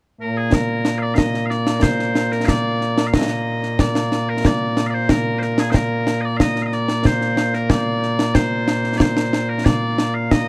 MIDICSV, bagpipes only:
0, 0, Header, 1, 2, 480
1, 0, Start_track
1, 0, Key_signature, -2, "major"
1, 0, Tempo, 652174
1, 389, Time_signature, 4, 2, 24, 8
1, 7715, End_track
2, 0, Start_track
2, 0, Title_t, "Bagpipes"
2, 0, Program_c, 0, 109
2, 155, Note_on_c, 0, 46, 89
2, 155, Note_on_c, 0, 58, 89
2, 155, Note_on_c, 0, 70, 76
2, 272, Note_off_c, 0, 70, 0
2, 272, Note_on_c, 0, 68, 79
2, 393, Note_off_c, 0, 68, 0
2, 393, Note_on_c, 0, 70, 85
2, 724, Note_off_c, 0, 70, 0
2, 724, Note_on_c, 0, 77, 77
2, 753, Note_off_c, 0, 77, 0
2, 753, Note_on_c, 0, 74, 77
2, 841, Note_off_c, 0, 74, 0
2, 841, Note_on_c, 0, 77, 91
2, 869, Note_off_c, 0, 77, 0
2, 869, Note_on_c, 0, 75, 91
2, 1074, Note_off_c, 0, 75, 0
2, 1074, Note_on_c, 0, 77, 86
2, 1106, Note_off_c, 0, 77, 0
2, 1106, Note_on_c, 0, 74, 86
2, 1339, Note_off_c, 0, 74, 0
2, 1339, Note_on_c, 0, 72, 90
2, 1709, Note_off_c, 0, 72, 0
2, 1709, Note_on_c, 0, 70, 79
2, 1807, Note_off_c, 0, 70, 0
2, 1807, Note_on_c, 0, 77, 98
2, 1831, Note_off_c, 0, 77, 0
2, 1831, Note_on_c, 0, 74, 98
2, 2258, Note_off_c, 0, 74, 0
2, 2258, Note_on_c, 0, 77, 66
2, 2318, Note_off_c, 0, 77, 0
2, 2318, Note_on_c, 0, 75, 88
2, 2796, Note_off_c, 0, 75, 0
2, 2796, Note_on_c, 0, 74, 75
2, 3158, Note_off_c, 0, 74, 0
2, 3158, Note_on_c, 0, 70, 89
2, 3283, Note_off_c, 0, 70, 0
2, 3283, Note_on_c, 0, 74, 79
2, 3581, Note_off_c, 0, 74, 0
2, 3581, Note_on_c, 0, 77, 62
2, 3608, Note_off_c, 0, 77, 0
2, 3608, Note_on_c, 0, 74, 62
2, 3634, Note_off_c, 0, 74, 0
2, 3634, Note_on_c, 0, 72, 85
2, 3752, Note_off_c, 0, 72, 0
2, 3752, Note_on_c, 0, 70, 94
2, 3967, Note_off_c, 0, 70, 0
2, 3967, Note_on_c, 0, 72, 74
2, 3995, Note_off_c, 0, 72, 0
2, 3995, Note_on_c, 0, 70, 74
2, 4116, Note_off_c, 0, 70, 0
2, 4116, Note_on_c, 0, 68, 75
2, 4201, Note_off_c, 0, 68, 0
2, 4201, Note_on_c, 0, 72, 86
2, 4233, Note_off_c, 0, 72, 0
2, 4233, Note_on_c, 0, 70, 86
2, 4570, Note_off_c, 0, 70, 0
2, 4570, Note_on_c, 0, 75, 73
2, 4599, Note_off_c, 0, 75, 0
2, 4599, Note_on_c, 0, 74, 88
2, 4687, Note_off_c, 0, 74, 0
2, 4687, Note_on_c, 0, 77, 99
2, 4718, Note_off_c, 0, 77, 0
2, 4718, Note_on_c, 0, 75, 99
2, 4874, Note_off_c, 0, 75, 0
2, 4874, Note_on_c, 0, 77, 63
2, 4902, Note_off_c, 0, 77, 0
2, 4902, Note_on_c, 0, 75, 63
2, 4954, Note_off_c, 0, 75, 0
2, 4954, Note_on_c, 0, 74, 98
2, 5194, Note_off_c, 0, 74, 0
2, 5194, Note_on_c, 0, 72, 92
2, 5554, Note_off_c, 0, 72, 0
2, 5554, Note_on_c, 0, 70, 83
2, 5666, Note_off_c, 0, 70, 0
2, 5666, Note_on_c, 0, 74, 101
2, 6142, Note_off_c, 0, 74, 0
2, 6142, Note_on_c, 0, 72, 87
2, 6604, Note_off_c, 0, 72, 0
2, 6604, Note_on_c, 0, 74, 78
2, 6634, Note_off_c, 0, 74, 0
2, 6634, Note_on_c, 0, 72, 78
2, 6988, Note_off_c, 0, 72, 0
2, 6988, Note_on_c, 0, 70, 84
2, 7100, Note_off_c, 0, 70, 0
2, 7100, Note_on_c, 0, 74, 91
2, 7465, Note_off_c, 0, 74, 0
2, 7465, Note_on_c, 0, 77, 83
2, 7593, Note_off_c, 0, 77, 0
2, 7593, Note_on_c, 0, 75, 100
2, 7715, Note_off_c, 0, 46, 0
2, 7715, Note_off_c, 0, 58, 0
2, 7715, Note_off_c, 0, 75, 0
2, 7715, End_track
0, 0, End_of_file